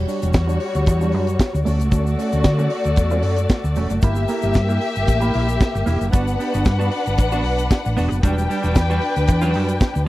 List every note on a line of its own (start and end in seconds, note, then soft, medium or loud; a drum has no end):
0.00 1.62 G3 medium
0.00 1.62 F#4 medium
0.00 1.62 C#5 medium
0.07 0.22 G3 soft
0.07 0.21 D4 soft
0.07 0.20 G4 soft
0.07 open hi-hat medium
0.07 shaker soft
0.21 0.33 E1 medium
0.21 0.32 G3 soft
0.21 0.33 D4 soft
0.21 0.34 F#4 medium
0.21 closed hi-hat soft
0.21 shaker medium
0.33 0.57 E2 loud
0.33 kick loud
0.33 snare loud
0.33 closed hi-hat medium
0.33 shaker medium
0.48 0.59 G3 medium
0.48 0.60 D4 medium
0.48 0.61 F#4 medium
0.48 shaker soft
0.60 muted clean electric guitar stroke soft
0.60 open hi-hat medium
0.75 0.87 D2 medium
0.75 muted clean electric guitar stroke soft
0.75 closed hi-hat soft
0.75 shaker soft
0.86 1.14 E2 medium
0.86 muted clean electric guitar stroke soft
0.86 kick medium
0.86 closed hi-hat medium
0.86 shaker medium
1.01 1.12 G3 medium
1.01 1.13 D4 medium
1.01 1.14 F#4 medium
1.01 shaker medium
1.12 1.36 F#2 medium
1.12 1.31 G3 medium
1.12 1.27 D4 medium
1.12 1.26 F#4 medium
1.12 open hi-hat medium
1.27 muted clean electric guitar stroke soft
1.27 closed hi-hat soft
1.27 shaker medium
1.39 kick loud
1.39 snare loud
1.39 closed hi-hat medium
1.39 shaker medium
1.53 1.64 D2 medium
1.53 muted clean electric guitar stroke soft
1.53 shaker medium
1.65 1.78 D2 medium
1.65 3.98 A3 medium
1.65 1.87 A3 medium
1.65 1.80 C#4 medium
1.65 3.98 F#4 medium
1.65 1.78 F#4 medium
1.65 3.98 D5 medium
1.65 open hi-hat medium
1.65 shaker medium
1.80 1.91 C#2 medium
1.80 muted clean electric guitar stroke medium
1.80 closed hi-hat soft
1.80 shaker medium
1.91 2.14 D2 medium
1.91 2.13 A3 medium
1.91 2.06 C#4 medium
1.91 2.04 F#4 medium
1.91 kick loud
1.91 closed hi-hat medium
1.91 shaker medium
2.06 muted clean electric guitar stroke soft
2.06 shaker medium
2.18 2.33 A3 medium
2.18 2.32 C#4 medium
2.18 2.32 A4 medium
2.18 open hi-hat medium
2.18 shaker soft
2.32 2.43 D2 medium
2.32 2.44 A3 soft
2.32 2.44 C#4 soft
2.32 2.45 F#4 soft
2.32 closed hi-hat soft
2.32 shaker medium
2.44 2.67 D3 medium
2.44 muted clean electric guitar stroke soft
2.44 kick loud
2.44 snare loud
2.44 closed hi-hat medium
2.44 shaker medium
2.59 2.70 A3 medium
2.59 2.70 C#4 medium
2.59 2.71 F#4 medium
2.59 shaker soft
2.70 muted clean electric guitar stroke soft
2.70 open hi-hat medium
2.84 2.96 D2 medium
2.84 muted clean electric guitar stroke soft
2.84 closed hi-hat soft
2.84 shaker soft
2.96 3.24 E2 medium
2.96 muted clean electric guitar stroke soft
2.96 kick loud
2.96 closed hi-hat medium
2.96 shaker medium
3.11 3.23 A3 medium
3.11 3.24 C#4 medium
3.11 3.25 F#4 medium
3.11 shaker medium
3.22 3.46 F#2 medium
3.22 3.41 A3 soft
3.22 3.37 C#4 medium
3.22 3.36 F#4 medium
3.22 open hi-hat medium
3.36 muted clean electric guitar stroke soft
3.36 closed hi-hat soft
3.36 shaker medium
3.49 muted clean electric guitar stroke soft
3.49 kick loud
3.49 snare loud
3.49 closed hi-hat medium
3.49 shaker medium
3.64 3.74 D2 medium
3.64 muted clean electric guitar stroke soft
3.64 shaker medium
3.76 3.88 E1 medium
3.76 3.98 A3 medium
3.76 3.91 C#4 medium
3.76 3.90 F#4 medium
3.76 open hi-hat medium
3.76 shaker medium
3.90 4.01 F#1 medium
3.90 muted clean electric guitar stroke soft
3.90 closed hi-hat soft
3.90 shaker medium
4.02 4.25 G1 medium
4.02 6.09 A#3 medium
4.02 4.24 A#3 medium
4.02 4.17 E4 medium
4.02 6.09 G4 loud
4.02 4.16 G4 medium
4.02 6.09 E5 loud
4.02 kick loud
4.02 closed hi-hat medium
4.02 shaker medium
4.15 muted clean electric guitar stroke soft
4.15 shaker medium
4.28 4.44 A#3 medium
4.28 4.43 E4 medium
4.28 4.43 A4 medium
4.28 open hi-hat medium
4.28 shaker medium
4.42 4.53 G1 medium
4.42 4.54 A#3 soft
4.42 4.55 E4 soft
4.42 4.55 G4 medium
4.42 closed hi-hat soft
4.42 shaker medium
4.54 4.77 G2 loud
4.54 muted clean electric guitar stroke soft
4.54 kick loud
4.54 snare loud
4.54 closed hi-hat medium
4.54 shaker medium
4.69 4.80 A#3 medium
4.69 4.81 E4 medium
4.69 4.82 G4 medium
4.69 shaker soft
4.81 muted clean electric guitar stroke soft
4.81 open hi-hat medium
4.95 5.06 G1 medium
4.95 muted clean electric guitar stroke soft
4.95 closed hi-hat soft
4.95 shaker soft
5.07 5.30 A1 medium
5.07 muted clean electric guitar stroke soft
5.07 kick medium
5.07 closed hi-hat medium
5.07 shaker medium
5.20 5.32 A#3 medium
5.20 5.33 E4 medium
5.20 5.34 G4 medium
5.20 shaker medium
5.33 5.57 A#1 medium
5.33 5.51 A#3 soft
5.33 5.47 E4 medium
5.33 5.46 G4 medium
5.33 open hi-hat medium
5.47 muted clean electric guitar stroke soft
5.47 closed hi-hat soft
5.47 shaker medium
5.60 muted clean electric guitar stroke soft
5.60 kick loud
5.60 snare medium
5.60 closed hi-hat medium
5.60 shaker medium
5.74 5.85 G1 medium
5.74 muted clean electric guitar stroke medium
5.74 shaker soft
5.86 5.99 E1 medium
5.86 6.08 A#3 medium
5.86 6.00 E4 medium
5.86 5.98 G4 medium
5.86 open hi-hat soft
5.86 shaker medium
6.00 6.11 F#1 medium
6.00 muted clean electric guitar stroke soft
6.00 closed hi-hat soft
6.00 shaker soft
6.12 6.35 G1 medium
6.12 6.34 B3 medium
6.12 8.19 D4 medium
6.12 6.26 D4 medium
6.12 6.25 F#4 medium
6.12 8.19 B4 medium
6.12 8.19 F#5 loud
6.12 kick loud
6.12 closed hi-hat medium
6.12 shaker medium
6.27 muted clean electric guitar stroke soft
6.27 shaker medium
6.39 6.53 B3 medium
6.39 6.52 D4 soft
6.39 6.52 G4 medium
6.39 open hi-hat medium
6.39 shaker soft
6.53 6.64 G1 medium
6.53 6.64 B3 soft
6.53 6.65 D4 soft
6.53 6.65 F#4 medium
6.53 closed hi-hat soft
6.53 shaker medium
6.65 6.88 G2 loud
6.65 kick loud
6.65 snare loud
6.65 closed hi-hat medium
6.65 shaker medium
6.79 6.90 B3 medium
6.79 6.91 D4 medium
6.79 6.91 F#4 medium
6.79 shaker soft
6.91 muted clean electric guitar stroke soft
6.91 open hi-hat medium
7.06 7.19 G1 medium
7.06 muted clean electric guitar stroke soft
7.06 closed hi-hat soft
7.06 shaker soft
7.18 7.45 A1 medium
7.18 muted clean electric guitar stroke soft
7.18 kick medium
7.18 closed hi-hat medium
7.18 shaker medium
7.32 7.43 B3 medium
7.32 7.44 D4 medium
7.32 7.44 F#4 medium
7.32 shaker medium
7.44 7.67 B1 medium
7.44 muted clean electric guitar stroke soft
7.44 open hi-hat medium
7.58 muted clean electric guitar stroke soft
7.58 closed hi-hat soft
7.58 shaker medium
7.70 muted clean electric guitar stroke soft
7.70 kick loud
7.70 snare loud
7.70 closed hi-hat medium
7.70 shaker medium
7.85 7.96 A1 medium
7.85 muted clean electric guitar stroke soft
7.85 shaker soft
7.97 8.09 E1 loud
7.97 8.18 B3 medium
7.97 8.11 D4 medium
7.97 8.09 F#4 medium
7.97 open hi-hat medium
7.97 shaker soft
8.10 8.22 F#1 medium
8.10 muted clean electric guitar stroke soft
8.10 closed hi-hat soft
8.10 shaker medium
8.23 8.45 E1 medium
8.23 8.44 G3 medium
8.23 10.03 D4 medium
8.23 8.37 D4 medium
8.23 8.35 F#4 medium
8.23 10.03 B4 loud
8.23 10.03 G5 loud
8.23 kick medium
8.23 closed hi-hat medium
8.23 shaker medium
8.37 muted clean electric guitar stroke soft
8.37 shaker medium
8.49 8.64 G3 medium
8.49 8.63 D4 medium
8.49 8.62 G4 medium
8.49 open hi-hat medium
8.49 shaker medium
8.63 8.74 E1 medium
8.63 8.75 G3 soft
8.63 8.76 D4 soft
8.63 8.76 F#4 medium
8.63 closed hi-hat soft
8.63 shaker soft
8.75 8.98 E2 medium
8.75 muted clean electric guitar stroke soft
8.75 kick loud
8.75 snare loud
8.75 closed hi-hat medium
8.75 shaker medium
8.90 9.01 G3 medium
8.90 9.02 D4 medium
8.90 9.02 F#4 medium
8.90 shaker soft
9.02 muted clean electric guitar stroke soft
9.02 open hi-hat medium
9.16 9.29 D2 medium
9.16 muted clean electric guitar stroke soft
9.16 closed hi-hat soft
9.16 shaker soft
9.28 9.56 E2 medium
9.28 muted clean electric guitar stroke soft
9.28 kick medium
9.28 closed hi-hat medium
9.28 shaker medium
9.41 9.53 G3 medium
9.41 9.53 D4 medium
9.41 9.54 F#4 medium
9.41 shaker medium
9.54 9.77 F#2 medium
9.54 9.71 G3 medium
9.54 9.67 D4 medium
9.54 9.66 F#4 medium
9.54 open hi-hat medium
9.68 muted clean electric guitar stroke soft
9.68 closed hi-hat soft
9.68 shaker medium
9.80 muted clean electric guitar stroke soft
9.80 kick loud
9.80 snare medium
9.80 closed hi-hat medium
9.80 shaker medium
9.94 10.06 D2 medium
9.94 muted clean electric guitar stroke soft
9.94 shaker soft